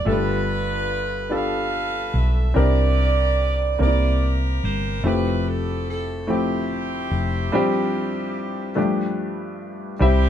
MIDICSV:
0, 0, Header, 1, 4, 480
1, 0, Start_track
1, 0, Tempo, 828729
1, 36, Time_signature, 6, 3, 24, 8
1, 5961, End_track
2, 0, Start_track
2, 0, Title_t, "Saxophone section"
2, 0, Program_c, 0, 65
2, 46, Note_on_c, 0, 71, 80
2, 50, Note_on_c, 0, 62, 57
2, 50, Note_on_c, 0, 65, 59
2, 741, Note_off_c, 0, 62, 0
2, 741, Note_off_c, 0, 65, 0
2, 762, Note_off_c, 0, 71, 0
2, 774, Note_on_c, 0, 69, 64
2, 775, Note_on_c, 0, 71, 63
2, 775, Note_on_c, 0, 77, 85
2, 1246, Note_off_c, 0, 77, 0
2, 1253, Note_on_c, 0, 76, 78
2, 1463, Note_off_c, 0, 69, 0
2, 1464, Note_off_c, 0, 71, 0
2, 1484, Note_on_c, 0, 74, 87
2, 1486, Note_off_c, 0, 76, 0
2, 1486, Note_on_c, 0, 67, 63
2, 1487, Note_on_c, 0, 70, 63
2, 2179, Note_off_c, 0, 67, 0
2, 2180, Note_off_c, 0, 70, 0
2, 2199, Note_off_c, 0, 74, 0
2, 2206, Note_on_c, 0, 74, 80
2, 2207, Note_on_c, 0, 70, 63
2, 2210, Note_on_c, 0, 67, 60
2, 2504, Note_off_c, 0, 74, 0
2, 2689, Note_on_c, 0, 72, 80
2, 2900, Note_off_c, 0, 70, 0
2, 2901, Note_off_c, 0, 67, 0
2, 2908, Note_off_c, 0, 72, 0
2, 2927, Note_on_c, 0, 71, 74
2, 2928, Note_on_c, 0, 64, 57
2, 2931, Note_on_c, 0, 67, 61
2, 3163, Note_off_c, 0, 71, 0
2, 3174, Note_on_c, 0, 69, 72
2, 3406, Note_off_c, 0, 69, 0
2, 3412, Note_on_c, 0, 69, 72
2, 3620, Note_off_c, 0, 64, 0
2, 3622, Note_off_c, 0, 67, 0
2, 3629, Note_off_c, 0, 69, 0
2, 3652, Note_on_c, 0, 67, 75
2, 3658, Note_on_c, 0, 60, 50
2, 3659, Note_on_c, 0, 64, 54
2, 5301, Note_off_c, 0, 67, 0
2, 5304, Note_off_c, 0, 60, 0
2, 5304, Note_off_c, 0, 64, 0
2, 5816, Note_on_c, 0, 67, 82
2, 5818, Note_on_c, 0, 60, 63
2, 5818, Note_on_c, 0, 64, 60
2, 5961, Note_off_c, 0, 60, 0
2, 5961, Note_off_c, 0, 64, 0
2, 5961, Note_off_c, 0, 67, 0
2, 5961, End_track
3, 0, Start_track
3, 0, Title_t, "Grand piano"
3, 0, Program_c, 1, 0
3, 0, Control_c, 1, 64, 127
3, 28, Note_on_c, 1, 57, 45
3, 32, Note_on_c, 1, 76, 51
3, 34, Note_on_c, 1, 65, 53
3, 35, Note_on_c, 1, 43, 46
3, 38, Note_on_c, 1, 67, 52
3, 42, Note_on_c, 1, 69, 66
3, 44, Control_c, 1, 64, 0
3, 66, Note_on_c, 1, 59, 58
3, 69, Note_off_c, 1, 57, 0
3, 163, Control_c, 1, 64, 127
3, 711, Note_off_c, 1, 76, 0
3, 712, Note_off_c, 1, 65, 0
3, 714, Note_off_c, 1, 67, 0
3, 716, Note_off_c, 1, 69, 0
3, 728, Note_off_c, 1, 59, 0
3, 734, Note_off_c, 1, 43, 0
3, 749, Note_on_c, 1, 59, 49
3, 751, Note_on_c, 1, 62, 46
3, 758, Note_on_c, 1, 65, 46
3, 760, Note_on_c, 1, 67, 47
3, 763, Note_on_c, 1, 69, 56
3, 1430, Note_off_c, 1, 59, 0
3, 1431, Note_off_c, 1, 62, 0
3, 1434, Note_off_c, 1, 65, 0
3, 1435, Note_off_c, 1, 67, 0
3, 1437, Note_off_c, 1, 69, 0
3, 1472, Note_on_c, 1, 60, 58
3, 1475, Note_on_c, 1, 62, 52
3, 1479, Note_on_c, 1, 48, 49
3, 1479, Note_on_c, 1, 64, 54
3, 1481, Note_on_c, 1, 67, 54
3, 1484, Control_c, 1, 64, 0
3, 1485, Note_on_c, 1, 70, 66
3, 1574, Control_c, 1, 64, 127
3, 2151, Note_off_c, 1, 60, 0
3, 2153, Note_off_c, 1, 62, 0
3, 2155, Note_off_c, 1, 64, 0
3, 2156, Note_off_c, 1, 67, 0
3, 2158, Note_off_c, 1, 70, 0
3, 2176, Note_off_c, 1, 48, 0
3, 2193, Note_on_c, 1, 58, 52
3, 2196, Note_on_c, 1, 60, 46
3, 2199, Note_on_c, 1, 48, 50
3, 2200, Note_on_c, 1, 62, 36
3, 2202, Note_on_c, 1, 67, 43
3, 2205, Control_c, 1, 64, 0
3, 2208, Note_on_c, 1, 70, 57
3, 2237, Note_off_c, 1, 62, 0
3, 2238, Note_on_c, 1, 64, 50
3, 2313, Control_c, 1, 64, 127
3, 2872, Note_off_c, 1, 58, 0
3, 2873, Note_off_c, 1, 60, 0
3, 2876, Note_off_c, 1, 67, 0
3, 2879, Note_off_c, 1, 70, 0
3, 2894, Note_off_c, 1, 64, 0
3, 2896, Note_off_c, 1, 48, 0
3, 2918, Note_on_c, 1, 57, 59
3, 2918, Note_on_c, 1, 60, 53
3, 2923, Note_on_c, 1, 64, 53
3, 2926, Control_c, 1, 64, 0
3, 2929, Note_on_c, 1, 53, 52
3, 2934, Note_on_c, 1, 67, 67
3, 3027, Control_c, 1, 64, 127
3, 3594, Note_off_c, 1, 57, 0
3, 3594, Note_off_c, 1, 60, 0
3, 3597, Note_off_c, 1, 64, 0
3, 3600, Note_off_c, 1, 53, 0
3, 3602, Note_off_c, 1, 67, 0
3, 3633, Note_on_c, 1, 57, 56
3, 3637, Note_on_c, 1, 60, 50
3, 3640, Note_on_c, 1, 64, 45
3, 3647, Note_on_c, 1, 53, 47
3, 3649, Note_on_c, 1, 67, 57
3, 4311, Note_off_c, 1, 57, 0
3, 4313, Note_off_c, 1, 60, 0
3, 4315, Note_off_c, 1, 64, 0
3, 4318, Note_off_c, 1, 53, 0
3, 4319, Note_off_c, 1, 67, 0
3, 4357, Note_on_c, 1, 55, 75
3, 4360, Note_on_c, 1, 60, 66
3, 4365, Note_on_c, 1, 43, 57
3, 4366, Note_on_c, 1, 62, 65
3, 4367, Control_c, 1, 64, 0
3, 4368, Note_on_c, 1, 53, 66
3, 4373, Note_on_c, 1, 67, 81
3, 4451, Control_c, 1, 64, 127
3, 5032, Note_off_c, 1, 55, 0
3, 5034, Note_off_c, 1, 60, 0
3, 5037, Note_off_c, 1, 62, 0
3, 5038, Note_off_c, 1, 53, 0
3, 5041, Note_off_c, 1, 67, 0
3, 5058, Note_off_c, 1, 43, 0
3, 5069, Note_on_c, 1, 57, 57
3, 5072, Note_on_c, 1, 71, 56
3, 5073, Note_on_c, 1, 62, 54
3, 5075, Note_on_c, 1, 43, 56
3, 5078, Note_on_c, 1, 53, 58
3, 5084, Control_c, 1, 64, 0
3, 5086, Note_on_c, 1, 67, 65
3, 5204, Control_c, 1, 64, 127
3, 5748, Note_off_c, 1, 57, 0
3, 5749, Note_off_c, 1, 71, 0
3, 5750, Note_off_c, 1, 62, 0
3, 5752, Note_off_c, 1, 53, 0
3, 5757, Note_off_c, 1, 67, 0
3, 5772, Note_off_c, 1, 43, 0
3, 5788, Note_on_c, 1, 55, 69
3, 5794, Note_on_c, 1, 60, 61
3, 5796, Note_on_c, 1, 48, 53
3, 5798, Note_on_c, 1, 64, 61
3, 5802, Control_c, 1, 64, 0
3, 5802, Note_on_c, 1, 67, 62
3, 5803, Note_on_c, 1, 76, 74
3, 5905, Control_c, 1, 64, 127
3, 5961, Note_off_c, 1, 48, 0
3, 5961, Note_off_c, 1, 55, 0
3, 5961, Note_off_c, 1, 60, 0
3, 5961, Note_off_c, 1, 64, 0
3, 5961, Note_off_c, 1, 67, 0
3, 5961, Note_off_c, 1, 76, 0
3, 5961, End_track
4, 0, Start_track
4, 0, Title_t, "Fingered electric bass"
4, 0, Program_c, 2, 33
4, 36, Note_on_c, 2, 31, 80
4, 1215, Note_off_c, 2, 31, 0
4, 1238, Note_on_c, 2, 35, 71
4, 1459, Note_off_c, 2, 35, 0
4, 1484, Note_on_c, 2, 36, 84
4, 2179, Note_off_c, 2, 36, 0
4, 2202, Note_on_c, 2, 36, 76
4, 2657, Note_off_c, 2, 36, 0
4, 2684, Note_on_c, 2, 31, 82
4, 2903, Note_off_c, 2, 31, 0
4, 2917, Note_on_c, 2, 29, 88
4, 4094, Note_off_c, 2, 29, 0
4, 4120, Note_on_c, 2, 29, 71
4, 4340, Note_off_c, 2, 29, 0
4, 5796, Note_on_c, 2, 36, 93
4, 5961, Note_off_c, 2, 36, 0
4, 5961, End_track
0, 0, End_of_file